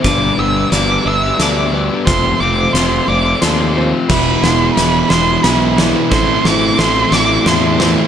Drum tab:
CC |------|------|x-----|------|
HH |x-x-x-|x-x-x-|--x-x-|------|
SD |o-o-o-|o-o-o-|oooooo|oooooo|
BD |o-----|o-----|o-----|o-----|